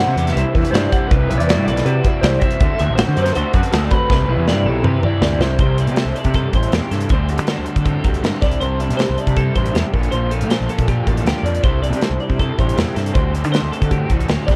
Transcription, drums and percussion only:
0.17 closed hi-hat
0.27 snare, closed hi-hat
0.37 closed hi-hat
0.55 kick, closed hi-hat
0.64 closed hi-hat
0.74 snare, closed hi-hat
0.92 kick, closed hi-hat
1.11 kick, closed hi-hat
1.31 closed hi-hat
1.40 closed hi-hat
1.49 snare, closed hi-hat
1.68 closed hi-hat
1.77 snare, closed hi-hat
1.86 closed hi-hat
2.04 kick, closed hi-hat
2.23 snare, closed hi-hat
2.41 kick, closed hi-hat
2.51 closed hi-hat
2.60 kick, closed hi-hat
2.79 closed hi-hat
2.98 snare, closed hi-hat
3.17 closed hi-hat
3.26 snare, closed hi-hat
3.35 closed hi-hat
3.54 kick, closed hi-hat
3.63 closed hi-hat
3.72 snare, closed hi-hat
3.90 kick, closed hi-hat
4.10 kick, snare
4.48 snare
4.84 mid tom
5.03 mid tom
5.22 snare
5.41 snare
5.59 kick, closed hi-hat
5.78 closed hi-hat
5.87 closed hi-hat
5.96 snare, closed hi-hat
6.16 closed hi-hat
6.24 kick, closed hi-hat
6.34 kick, closed hi-hat
6.53 kick, closed hi-hat
6.63 closed hi-hat
6.72 snare, closed hi-hat
6.92 snare, closed hi-hat
7.01 closed hi-hat
7.09 kick, closed hi-hat
7.29 closed hi-hat
7.38 closed hi-hat
7.47 snare, closed hi-hat
7.66 closed hi-hat
7.76 kick, closed hi-hat
7.86 kick, closed hi-hat
8.04 kick, closed hi-hat
8.14 closed hi-hat
8.24 snare, closed hi-hat
8.42 kick, snare, closed hi-hat
8.51 closed hi-hat
8.61 closed hi-hat
8.80 closed hi-hat
8.90 closed hi-hat
8.99 snare, closed hi-hat
9.18 closed hi-hat
9.27 kick, closed hi-hat
9.36 kick, closed hi-hat
9.55 kick, closed hi-hat
9.65 closed hi-hat
9.75 snare, closed hi-hat
9.93 kick, closed hi-hat
10.03 closed hi-hat
10.12 closed hi-hat
10.31 closed hi-hat
10.41 closed hi-hat
10.50 snare, closed hi-hat
10.69 closed hi-hat
10.78 kick, closed hi-hat
10.88 kick, closed hi-hat
11.07 kick, closed hi-hat
11.17 closed hi-hat
11.27 snare, closed hi-hat
11.46 closed hi-hat
11.55 closed hi-hat
11.63 kick, closed hi-hat
11.84 closed hi-hat
11.93 closed hi-hat
12.01 snare, closed hi-hat
12.20 closed hi-hat
12.29 kick, closed hi-hat
12.39 kick, closed hi-hat
12.58 kick, closed hi-hat
12.69 closed hi-hat
12.77 snare, closed hi-hat
12.96 snare, closed hi-hat
13.06 closed hi-hat
13.15 kick, closed hi-hat
13.35 closed hi-hat
13.44 closed hi-hat
13.54 snare, closed hi-hat
13.73 closed hi-hat
13.82 kick, closed hi-hat
13.91 kick, closed hi-hat
14.10 kick, closed hi-hat
14.20 closed hi-hat
14.28 snare, closed hi-hat
14.48 kick, snare, closed hi-hat

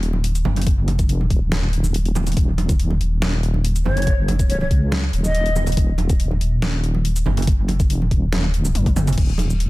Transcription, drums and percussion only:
0.03 closed hi-hat
0.13 high conga
0.24 closed hi-hat
0.35 closed hi-hat, shaker
0.45 high conga, low conga
0.56 closed hi-hat, low conga
0.62 closed hi-hat
0.67 kick, closed hi-hat
0.88 closed hi-hat, high conga
0.99 kick, closed hi-hat, shaker
1.09 closed hi-hat
1.21 high conga
1.30 kick, closed hi-hat
1.52 snare, closed hi-hat, high conga
1.73 closed hi-hat
1.84 high conga, shaker
1.94 closed hi-hat
2.05 closed hi-hat
2.15 high conga, low conga, shaker
2.27 closed hi-hat, low conga, shaker
2.32 closed hi-hat
2.37 kick, closed hi-hat
2.58 closed hi-hat, high conga
2.69 kick, closed hi-hat, shaker
2.80 closed hi-hat
2.91 high conga
3.01 closed hi-hat
3.22 snare, closed hi-hat, high conga
3.43 closed hi-hat
3.54 high conga
3.65 closed hi-hat
3.76 closed hi-hat, shaker
3.85 high conga, low conga
3.97 closed hi-hat, low conga
4.02 closed hi-hat
4.07 kick, closed hi-hat
4.28 closed hi-hat, high conga
4.39 kick, closed hi-hat, shaker
4.50 closed hi-hat
4.61 high conga
4.71 kick, closed hi-hat
4.92 snare, closed hi-hat, high conga
5.13 closed hi-hat
5.24 high conga, shaker
5.35 closed hi-hat
5.46 closed hi-hat
5.56 high conga, low conga, shaker
5.66 closed hi-hat, low conga, shaker
5.72 closed hi-hat
5.77 kick, closed hi-hat
5.98 closed hi-hat, high conga
6.09 kick, closed hi-hat, shaker
6.20 closed hi-hat
6.31 high conga
6.41 closed hi-hat
6.62 snare, closed hi-hat, high conga
6.84 closed hi-hat
6.95 high conga
7.05 closed hi-hat
7.16 closed hi-hat, shaker
7.26 high conga, low conga
7.37 closed hi-hat, low conga
7.42 closed hi-hat
7.47 kick, closed hi-hat
7.68 closed hi-hat, high conga
7.80 kick, closed hi-hat, shaker
7.90 closed hi-hat
8.02 high conga
8.11 kick, closed hi-hat
8.33 snare, closed hi-hat, high conga
8.54 closed hi-hat
8.65 high conga, shaker
8.75 closed hi-hat, high tom
8.86 kick, closed hi-hat, high tom
8.96 mid tom, high conga, low conga, shaker
9.07 closed hi-hat, mid tom, low conga, shaker
9.13 closed hi-hat
9.18 kick, closed hi-hat, crash
9.38 closed hi-hat, high conga
9.50 shaker
9.60 closed hi-hat

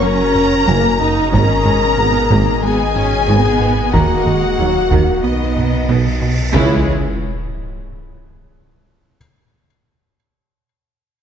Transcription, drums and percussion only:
0.35 taiko low-mid
1.33 taiko
1.66 taiko low-mid
2.31 taiko
2.96 taiko low-mid
3.94 taiko
4.26 taiko low-mid
4.91 taiko
5.57 taiko low-mid
6.54 taiko

